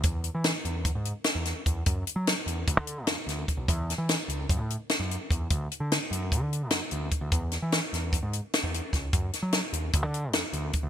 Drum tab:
HH |xxxxxxxxx|xxxxxxxxx|xxxxxxxxx|xxxxxxxxx|
SD |--o---oo-|--o---oo-|-oo---o--|--o---o--|
BD |o---o---o|o---o---o|o---o---o|o---o---o|

HH |xxxxxxxxx|xxxxxxxxx|
SD |-ooo--o-o|-oo---o--|
BD |o---o---o|o---o---o|